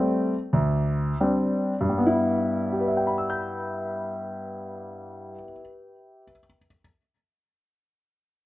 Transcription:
0.00 0.33 G3 medium
0.00 0.33 A3 soft
0.00 0.33 C4 medium
0.53 1.13 D2 medium
1.21 1.72 G3 soft
1.21 1.73 C4 soft
1.21 1.72 D4 medium
1.81 5.34 G2 medium
1.89 5.42 G3 soft
1.98 5.51 B3 soft
2.07 5.60 E4 medium
2.72 6.21 G4 soft
2.80 6.29 B4 soft
2.88 6.37 E5 soft
2.97 6.46 G5 soft
3.07 6.56 B5 soft
3.18 6.67 E6 soft
3.30 6.79 G6 soft

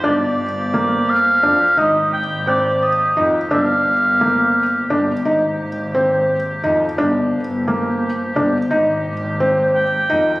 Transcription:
0.00 0.18 G1 medium
0.00 8.67 A#3 medium
0.00 0.45 D4 medium
0.00 6.94 G4 medium
0.04 1.76 F3 medium
0.04 1.11 D5 medium
0.38 1.27 G1 medium
0.74 1.15 A#3 medium
1.10 1.80 F5 medium
1.43 1.72 F2 medium
1.43 1.64 D4 medium
1.77 1.92 G#1 medium
1.77 3.49 C3 medium
1.77 2.19 D#4 medium
1.77 2.13 D#5 medium
2.12 3.01 G#1 medium
2.12 2.50 G5 loud
2.47 2.89 C4 medium
2.47 2.84 D5 medium
2.83 3.25 D#5 medium
3.16 3.46 F2 medium
3.16 3.37 D#4 medium
3.51 3.66 G1 medium
3.51 5.08 F3 medium
3.51 3.92 D4 medium
3.51 4.86 F5 medium
3.86 4.74 G1 medium
4.21 4.62 A#3 medium
4.90 5.19 G1 medium
4.90 5.11 D4 medium
5.24 5.39 G#1 medium
5.24 6.96 C3 medium
5.24 5.67 D#4 medium
5.59 6.47 G#1 medium
5.94 6.36 C4 medium
6.63 6.93 F2 medium
6.63 6.84 D#4 medium
6.98 7.12 G1 medium
6.98 8.69 F3 medium
6.98 7.40 D4 medium
6.98 10.40 G4 medium
7.33 8.21 G1 medium
7.68 8.09 A#3 medium
8.36 8.66 G1 medium
8.36 8.57 D4 medium
8.71 8.86 G#1 medium
8.71 10.40 C3 medium
8.71 10.40 A#3 medium
8.71 9.12 D#4 medium
9.05 9.94 G#1 medium
9.40 9.82 C4 medium
9.75 10.40 G5 loud
10.09 10.39 F2 medium
10.09 10.30 D#4 medium

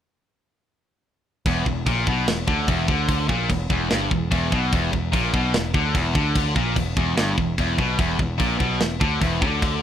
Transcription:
1.46 1.65 E1 medium
1.46 1.66 E2 loud
1.46 kick loud
1.46 crash medium
1.66 1.86 E1 medium
1.66 1.83 E2 medium
1.66 kick medium
1.86 2.06 A#1 loud
1.86 2.07 A#2 loud
1.86 kick loud
1.86 crash medium
2.07 2.27 B1 medium
2.07 2.28 B2 loud
2.07 kick loud
2.27 2.47 E1 medium
2.27 2.44 E2 medium
2.27 snare loud
2.27 crash medium
2.47 2.67 D2 medium
2.47 2.68 D3 loud
2.47 kick loud
2.67 2.87 E1 medium
2.67 2.88 E2 loud
2.67 kick loud
2.67 crash medium
2.88 3.27 D2 loud
2.88 3.28 D3 loud
2.88 kick loud
3.09 kick loud
3.09 crash medium
3.28 3.49 A#1 loud
3.28 3.49 A#2 loud
3.28 kick loud
3.50 3.69 E1 medium
3.50 3.67 E2 medium
3.50 kick medium
3.50 crash medium
3.69 3.89 E1 medium
3.69 3.89 E2 loud
3.69 kick loud
3.90 4.11 G1 medium
3.90 4.11 G2 loud
3.90 snare loud
3.90 crash soft
4.11 4.31 E1 medium
4.11 4.28 E2 medium
4.11 kick medium
4.31 4.51 E1 loud
4.31 4.52 E2 loud
4.31 kick loud
4.31 crash medium
4.51 4.72 B1 loud
4.51 4.72 B2 medium
4.51 kick loud
4.72 4.92 E1 loud
4.72 4.91 E2 loud
4.72 kick loud
4.72 crash medium
4.93 5.12 E1 medium
4.93 5.10 E2 medium
4.93 kick medium
5.12 5.32 A#1 loud
5.12 5.33 A#2 loud
5.12 kick loud
5.12 crash medium
5.33 5.53 B1 loud
5.33 5.54 B2 loud
5.33 kick loud
5.54 5.73 E1 medium
5.54 5.71 E2 medium
5.54 snare loud
5.54 crash medium
5.74 5.94 D2 loud
5.74 5.95 D3 loud
5.74 kick loud
5.94 6.14 E1 loud
5.94 6.14 E2 loud
5.94 kick loud
5.94 crash medium
6.14 6.53 D2 medium
6.14 6.55 D3 loud
6.14 kick loud
6.36 kick loud
6.36 crash medium
6.55 6.75 A#1 medium
6.55 6.76 A#2 loud
6.55 kick loud
6.76 6.96 E1 medium
6.76 6.93 E2 medium
6.76 kick medium
6.76 crash medium
6.97 7.16 E1 loud
6.97 7.16 E2 loud
6.97 kick loud
7.16 7.36 G1 medium
7.16 7.37 G2 loud
7.16 snare loud
7.16 crash medium
7.38 7.57 E1 medium
7.38 7.54 E2 medium
7.38 kick medium
7.58 7.77 E1 loud
7.58 7.78 E2 loud
7.58 kick loud
7.58 crash medium
7.78 7.98 B1 medium
7.78 7.98 B2 loud
7.78 kick loud
7.99 8.18 E1 loud
7.99 8.19 E2 loud
7.99 kick loud
7.99 crash medium
8.19 8.38 E1 medium
8.19 8.36 E2 medium
8.19 kick medium
8.38 8.59 A#1 loud
8.38 8.58 A#2 loud
8.38 kick loud
8.38 crash medium
8.59 8.79 B1 loud
8.59 8.79 B2 loud
8.59 kick loud
8.80 8.99 E1 medium
8.80 8.97 E2 medium
8.80 snare loud
8.80 crash medium
9.01 9.20 D2 medium
9.01 9.21 D3 loud
9.01 kick loud
9.20 9.40 E1 medium
9.20 9.41 E2 loud
9.20 kick loud
9.20 crash medium
9.41 9.79 D2 medium
9.41 9.81 D3 loud
9.41 kick loud
9.62 kick loud
9.62 crash medium

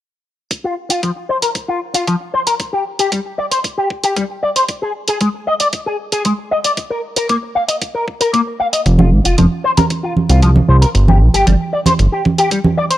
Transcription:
0.51 kick loud
0.51 closed hi-hat soft
0.64 0.74 F4 medium
0.90 1.00 F4 medium
0.90 closed hi-hat medium
1.03 1.10 F3 medium
1.03 kick loud
1.03 closed hi-hat soft
1.29 1.36 C5 medium
1.42 1.49 A#4 medium
1.42 closed hi-hat medium
1.55 kick loud
1.55 closed hi-hat soft
1.68 1.78 F4 medium
1.94 2.04 F4 medium
1.94 closed hi-hat medium
2.07 2.14 F3 medium
2.07 kick loud
2.07 closed hi-hat soft
2.34 2.40 C5 medium
2.47 2.53 A#4 medium
2.47 closed hi-hat medium
2.60 kick loud
2.60 closed hi-hat soft
2.73 2.83 G4 medium
2.99 3.09 G4 medium
2.99 closed hi-hat medium
3.12 3.19 G3 medium
3.12 kick loud
3.12 closed hi-hat soft
3.38 3.45 D5 medium
3.51 3.58 C5 medium
3.51 closed hi-hat medium
3.64 kick loud
3.64 closed hi-hat soft
3.77 3.87 G4 medium
3.90 kick medium
4.03 4.13 G4 medium
4.03 closed hi-hat medium
4.16 4.23 G3 medium
4.16 kick loud
4.16 closed hi-hat soft
4.43 4.49 D5 medium
4.56 4.62 C5 medium
4.56 closed hi-hat medium
4.69 kick loud
4.69 closed hi-hat soft
4.82 4.92 G#4 medium
5.08 5.18 G#4 medium
5.08 closed hi-hat medium
5.21 5.28 G#3 medium
5.21 kick loud
5.21 closed hi-hat soft
5.47 5.54 D#5 medium
5.60 5.67 D5 medium
5.60 closed hi-hat medium
5.73 kick loud
5.73 closed hi-hat soft
5.86 5.96 G#4 medium
6.12 6.22 G#4 medium
6.12 closed hi-hat medium
6.25 6.32 G#3 medium
6.25 kick loud
6.25 closed hi-hat soft
6.51 6.58 D#5 medium
6.64 6.71 D5 medium
6.64 closed hi-hat medium
6.77 kick loud
6.77 closed hi-hat soft
6.90 7.00 A#4 medium
7.16 7.26 A#4 medium
7.16 closed hi-hat medium
7.29 7.36 A#3 medium
7.29 kick loud
7.29 closed hi-hat soft
7.55 7.62 F5 medium
7.68 7.75 D#5 medium
7.68 closed hi-hat medium
7.82 kick loud
7.82 closed hi-hat soft
7.94 8.04 A#4 medium
8.08 kick medium
8.21 8.30 A#4 medium
8.21 closed hi-hat medium
8.33 8.40 A#3 medium
8.33 kick loud
8.33 closed hi-hat soft
8.60 8.66 F5 medium
8.73 8.79 D#5 medium
8.73 closed hi-hat medium
8.86 9.13 F1 medium
8.86 kick loud
8.86 closed hi-hat soft
8.99 9.09 F4 medium
8.99 high conga medium
9.12 9.20 G#1 medium
9.25 9.35 F1 soft
9.25 9.35 F4 medium
9.25 closed hi-hat medium
9.38 9.46 F1 medium
9.38 9.45 F3 medium
9.38 kick loud
9.38 closed hi-hat soft
9.38 high conga medium
9.64 9.71 C5 medium
9.77 9.84 A#4 medium
9.77 closed hi-hat medium
9.77 high conga medium
9.90 kick loud
9.90 closed hi-hat soft
10.03 10.13 F4 medium
10.17 high conga medium
10.29 10.61 C2 medium
10.29 10.39 F4 medium
10.29 closed hi-hat medium
10.42 10.49 F3 medium
10.42 kick loud
10.42 closed hi-hat soft
10.56 high conga medium
10.68 10.85 C2 medium
10.68 10.75 C5 medium
10.82 10.88 A#4 medium
10.82 closed hi-hat medium
10.95 11.22 G1 medium
10.95 kick loud
10.95 closed hi-hat soft
11.08 11.18 G4 medium
11.08 high conga medium
11.21 11.29 A#1 medium
11.34 11.44 G1 soft
11.34 11.44 G4 medium
11.34 closed hi-hat medium
11.47 11.55 G1 medium
11.47 11.53 G3 medium
11.47 kick loud
11.47 closed hi-hat soft
11.47 high conga medium
11.73 11.79 D5 medium
11.86 11.93 C5 medium
11.86 closed hi-hat medium
11.86 high conga medium
11.99 12.07 G1 medium
11.99 kick loud
11.99 closed hi-hat soft
12.12 12.22 G4 medium
12.25 kick medium
12.25 high conga medium
12.38 12.48 G4 loud
12.38 closed hi-hat medium
12.51 12.58 G3 medium
12.51 kick loud
12.51 closed hi-hat soft
12.64 high conga medium
12.77 12.84 D5 medium
12.90 12.97 C5 medium
12.90 closed hi-hat medium

